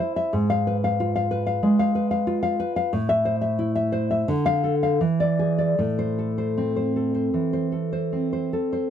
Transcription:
0.00 0.32 E4 medium
0.00 0.33 C5 medium
0.00 0.15 E5 medium
0.16 0.33 E5 medium
0.33 1.59 G#2 medium
0.50 0.76 F5 medium
0.67 1.30 B4 medium
0.84 1.14 F5 medium
1.00 1.96 F4 medium
1.16 1.45 F5 medium
1.31 1.94 B4 medium
1.47 1.78 F5 medium
1.63 2.60 G#3 medium
1.79 2.10 F5 medium
1.95 2.58 B4 medium
2.11 2.41 F5 medium
2.27 2.92 F4 medium
2.43 2.75 F5 medium
2.60 2.92 B4 medium
2.76 2.92 F5 medium
2.93 4.24 A2 medium
3.09 3.35 E5 medium
3.25 3.91 C5 medium
3.41 3.74 E5 medium
3.59 4.28 E4 medium
3.75 4.09 E5 medium
3.92 4.27 C5 medium
4.11 4.28 E5 medium
4.28 4.99 D3 medium
4.46 4.74 F5 medium
4.64 5.01 A4 medium
4.83 5.01 F5 medium
5.01 5.77 E3 medium
5.20 5.51 D5 medium
5.39 5.79 G#4 medium
5.58 5.79 D5 medium
5.79 7.30 A2 medium
5.99 6.30 C5 medium
6.19 6.95 A4 soft
6.38 6.75 C5 soft
6.58 7.73 C4 soft
6.76 7.13 C5 soft
6.96 7.71 A4 soft
7.15 7.52 C5 soft
7.34 8.52 E3 soft
7.53 7.91 C5 soft
7.72 8.52 A4 soft
7.93 8.32 C5 soft
8.13 8.90 C4 soft
8.33 8.71 C5 soft
8.53 8.90 A4 soft
8.73 8.90 C5 soft

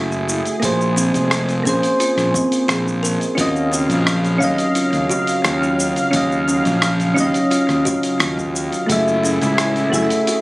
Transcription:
0.00 0.40 F#1 medium
0.00 0.59 A2 medium
0.00 0.56 A3 loud
0.00 0.59 E4 medium
0.00 0.25 F#4 medium
0.00 0.57 F#4 medium
0.00 0.58 G#4 medium
0.00 3.34 G#4 medium
0.00 0.59 E5 loud
0.12 cabasa soft
0.29 cabasa medium
0.45 open hi-hat soft
0.45 cabasa soft
0.60 1.09 A#1 medium
0.60 1.60 A#3 medium
0.60 1.62 G#4 medium
0.60 kick loud
0.60 open hi-hat medium
0.60 cabasa soft
0.65 1.63 C5 medium
0.81 cabasa soft
0.96 1.29 C4 medium
0.96 cabasa medium
1.14 1.61 F1 medium
1.14 open hi-hat soft
1.14 cabasa soft
1.31 cross-stick loud
1.31 open hi-hat medium
1.31 cabasa soft
1.49 open hi-hat soft
1.49 cabasa soft
1.63 1.80 A#1 loud
1.63 3.33 A#3 medium
1.63 1.96 C#4 medium
1.63 3.35 G#4 medium
1.63 kick loud
1.63 cabasa medium
1.69 3.36 C5 loud
1.83 open hi-hat soft
1.83 cabasa soft
2.00 2.31 F4 medium
2.00 open hi-hat medium
2.00 cabasa soft
2.17 2.31 A#1 medium
2.17 cross-stick soft
2.17 open hi-hat soft
2.17 cabasa soft
2.34 2.53 C4 medium
2.34 kick loud
2.34 cabasa medium
2.52 open hi-hat soft
2.52 cabasa soft
2.68 3.16 A#1 medium
2.68 3.00 G#4 loud
2.68 cross-stick loud
2.68 open hi-hat medium
2.68 cabasa soft
2.86 kick medium
2.86 cabasa soft
3.03 3.34 A#4 medium
3.03 cabasa medium
3.21 open hi-hat soft
3.21 cabasa soft
3.35 3.85 D#2 medium
3.35 8.85 C#3 medium
3.35 8.85 F#3 medium
3.35 4.36 C#4 medium
3.35 4.37 F4 medium
3.35 4.38 F#4 medium
3.35 8.85 F5 medium
3.35 kick loud
3.35 open hi-hat medium
3.35 cabasa soft
3.41 4.39 D#5 medium
3.56 cabasa soft
3.72 4.05 C#4 medium
3.72 cabasa medium
3.89 4.37 A#1 loud
3.89 open hi-hat soft
3.89 cabasa soft
4.07 cross-stick loud
4.07 open hi-hat medium
4.07 cabasa soft
4.25 open hi-hat soft
4.25 cabasa soft
4.38 4.56 D#2 medium
4.38 6.10 F#3 medium
4.38 6.08 C#4 loud
4.38 4.72 D#4 medium
4.38 6.09 F5 medium
4.38 kick loud
4.38 cabasa medium
4.44 6.11 D#5 loud
4.58 open hi-hat soft
4.58 cabasa soft
4.75 5.07 F4 medium
4.75 open hi-hat medium
4.75 cabasa soft
4.93 5.07 D#2 medium
4.93 open hi-hat soft
4.93 cabasa soft
5.10 5.41 F#4 loud
5.10 cabasa medium
5.27 open hi-hat soft
5.27 cabasa soft
5.44 5.92 D#2 medium
5.44 5.77 F4 medium
5.44 cross-stick medium
5.44 open hi-hat medium
5.44 cabasa soft
5.63 cabasa soft
5.80 cabasa medium
5.96 open hi-hat soft
5.96 cabasa soft
6.11 6.61 D#2 loud
6.11 7.13 F#3 medium
6.11 7.12 C#4 medium
6.11 7.13 F5 medium
6.11 kick loud
6.11 open hi-hat medium
6.11 cabasa soft
6.16 7.14 D#5 medium
6.32 cabasa soft
6.48 6.81 C#4 medium
6.48 cabasa medium
6.65 7.13 A#1 loud
6.65 open hi-hat soft
6.65 cabasa soft
6.82 cross-stick loud
6.82 open hi-hat medium
6.82 cabasa soft
7.00 open hi-hat soft
7.00 cabasa soft
7.14 7.32 D#2 loud
7.14 8.86 F#3 medium
7.14 8.84 C#4 loud
7.14 7.48 D#4 medium
7.14 8.85 F5 medium
7.14 kick loud
7.14 cabasa medium
7.20 8.87 D#5 loud
7.34 open hi-hat soft
7.34 cabasa soft
7.51 7.82 F4 medium
7.51 open hi-hat medium
7.51 cabasa soft
7.69 7.83 D#2 medium
7.69 cross-stick soft
7.69 open hi-hat soft
7.69 cabasa soft
7.85 8.17 F#4 loud
7.85 kick loud
7.85 cabasa medium
8.03 open hi-hat soft
8.03 cabasa soft
8.20 8.68 D#2 medium
8.20 8.53 F4 medium
8.20 cross-stick medium
8.20 open hi-hat medium
8.20 cabasa soft
8.38 kick medium
8.38 cabasa soft
8.56 cabasa medium
8.72 open hi-hat soft
8.72 cabasa soft
8.86 9.37 F#1 medium
8.86 10.41 A2 medium
8.86 9.87 A3 medium
8.86 10.41 E4 medium
8.86 9.88 F#4 medium
8.86 10.41 G#4 medium
8.86 9.89 G#4 medium
8.86 kick loud
8.86 open hi-hat medium
8.91 9.90 E5 medium
8.91 cabasa soft
9.08 cabasa soft
9.23 9.56 C#4 medium
9.23 cabasa medium
9.41 9.88 C#2 loud
9.41 open hi-hat soft
9.41 cabasa soft
9.58 cross-stick loud
9.58 open hi-hat medium
9.58 cabasa soft
9.76 open hi-hat soft
9.76 cabasa soft
9.90 10.08 F#1 loud
9.90 10.41 A3 loud
9.90 10.24 E4 medium
9.90 10.41 F#4 medium
9.90 10.41 G#4 medium
9.90 kick loud
9.90 cabasa medium
9.95 10.41 E5 loud
10.10 open hi-hat soft
10.10 cabasa soft
10.27 10.41 F#4 medium
10.27 open hi-hat medium
10.27 cabasa soft

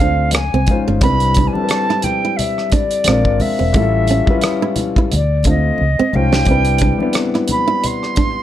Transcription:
0.00 0.35 D2 loud
0.00 0.33 A3 medium
0.00 0.34 C4 medium
0.00 0.34 D4 medium
0.00 0.14 D4 medium
0.00 0.35 F4 medium
0.00 0.35 C5 medium
0.00 0.30 F5 medium
0.00 kick medium
0.31 0.83 G#5 loud
0.31 cross-stick loud
0.31 closed hi-hat medium
0.31 muted conga soft
0.31 high conga medium
0.35 0.50 C#2 loud
0.54 0.66 C2 medium
0.54 0.64 C4 medium
0.67 0.99 G#3 medium
0.67 0.99 C#4 medium
0.67 1.00 D#4 medium
0.67 1.00 F4 medium
0.67 muted nylon-string guitar stroke soft
0.67 kick medium
0.67 closed hi-hat medium
0.67 muted conga soft
0.67 high conga medium
0.67 low conga medium
0.71 1.01 C5 medium
0.88 1.01 G1 medium
0.88 0.98 C#4 medium
1.01 1.47 C2 loud
1.01 1.49 G3 medium
1.01 1.50 C4 medium
1.01 1.16 C4 medium
1.01 1.50 D4 medium
1.01 1.51 E4 medium
1.01 1.49 B5 loud
1.01 kick loud
1.01 closed hi-hat medium
1.01 muted conga soft
1.05 1.51 B4 medium
1.20 closed hi-hat soft
1.34 1.51 D4 medium
1.34 kick medium
1.34 closed hi-hat medium
1.47 1.54 G#5 medium
1.53 2.77 G3 medium
1.53 2.78 C4 medium
1.53 2.78 D4 medium
1.53 2.79 E4 medium
1.53 2.05 A5 loud
1.53 high conga medium
1.57 1.62 A4 medium
1.64 2.82 B4 medium
1.69 cross-stick loud
1.69 closed hi-hat medium
1.69 muted conga soft
1.90 2.01 E4 medium
1.90 cross-stick soft
2.02 2.38 G5 medium
2.02 muted nylon-string guitar stroke soft
2.02 closed hi-hat medium
2.02 muted conga soft
2.02 high conga medium
2.02 low conga medium
2.25 2.35 E4 medium
2.36 2.74 E5 medium
2.36 closed hi-hat medium
2.36 low conga medium
2.58 cross-stick soft
2.70 2.86 D4 medium
2.70 3.43 D5 medium
2.70 kick medium
2.70 closed hi-hat medium
2.70 muted conga soft
2.91 closed hi-hat soft
3.04 3.23 A#1 medium
3.04 3.68 G#3 medium
3.04 3.69 C4 medium
3.04 3.21 C4 medium
3.04 3.69 D4 medium
3.04 3.70 F4 medium
3.04 cross-stick loud
3.04 closed hi-hat medium
3.04 high conga medium
3.09 3.70 A#4 medium
3.25 kick medium
3.40 4.77 E5 medium
3.40 muted nylon-string guitar stroke soft
3.40 open hi-hat soft
3.40 muted conga soft
3.40 high conga medium
3.40 low conga medium
3.59 3.73 E1 medium
3.59 3.70 C4 medium
3.73 4.20 A1 medium
3.73 4.21 G3 medium
3.73 3.89 A3 medium
3.73 4.22 C#4 medium
3.73 4.23 E4 medium
3.73 4.23 F4 medium
3.73 kick loud
3.73 closed hi-hat medium
3.77 4.23 A4 medium
4.07 4.23 C#4 medium
4.07 closed hi-hat medium
4.07 muted conga soft
4.26 5.10 G3 medium
4.26 5.11 C#4 medium
4.26 5.12 E4 medium
4.26 5.12 F4 medium
4.26 kick medium
4.26 high conga medium
4.30 5.12 B4 medium
4.41 cross-stick loud
4.41 closed hi-hat medium
4.41 muted conga soft
4.62 4.73 E4 medium
4.76 muted nylon-string guitar stroke soft
4.76 closed hi-hat medium
4.76 muted conga soft
4.76 high conga medium
4.76 low conga medium
4.96 5.08 E4 medium
4.96 kick medium
5.12 5.70 D2 loud
5.12 5.45 D5 medium
5.12 closed hi-hat medium
5.12 low conga medium
5.43 5.79 D3 medium
5.43 5.78 A3 medium
5.43 5.79 C4 medium
5.43 5.80 F4 medium
5.43 kick medium
5.43 closed hi-hat medium
5.43 muted conga soft
5.47 5.60 D4 medium
5.47 5.80 C5 medium
5.47 6.17 D#5 medium
5.78 5.96 C#2 medium
5.78 high conga medium
5.99 6.10 C4 medium
5.99 muted fingered electric bass stroke soft
6.12 6.44 C2 medium
6.12 6.44 G#3 medium
6.12 6.45 C#4 medium
6.12 6.45 D#4 medium
6.12 6.46 F4 medium
6.12 7.17 G5 medium
6.12 muted nylon-string guitar stroke soft
6.12 muted conga soft
6.12 high conga medium
6.12 low conga medium
6.17 6.46 C5 medium
6.32 6.43 C#4 medium
6.32 snare medium
6.45 6.92 C2 medium
6.45 6.95 G3 medium
6.45 6.95 C4 medium
6.45 6.61 C4 medium
6.45 6.96 D4 medium
6.45 kick loud
6.45 closed hi-hat medium
6.45 muted conga soft
6.50 6.96 E4 medium
6.50 6.97 B4 medium
6.65 closed hi-hat soft
6.78 6.95 D4 medium
6.78 kick medium
6.78 closed hi-hat medium
6.78 muted conga soft
6.98 8.22 G3 medium
6.98 8.23 C4 medium
6.98 8.24 D4 medium
6.98 8.24 E4 medium
6.98 high conga medium
7.03 8.25 B3 medium
7.13 cross-stick loud
7.13 closed hi-hat medium
7.13 muted conga soft
7.34 7.46 E4 medium
7.34 cross-stick soft
7.48 7.88 B5 medium
7.48 muted nylon-string guitar stroke soft
7.48 closed hi-hat medium
7.48 high conga medium
7.48 low conga medium
7.68 7.79 E4 medium
7.84 8.43 C6 loud
7.84 closed hi-hat medium
7.84 muted conga soft
7.84 low conga medium
8.03 cross-stick soft
8.15 8.31 D4 medium
8.15 kick medium
8.15 closed hi-hat medium
8.15 muted conga soft

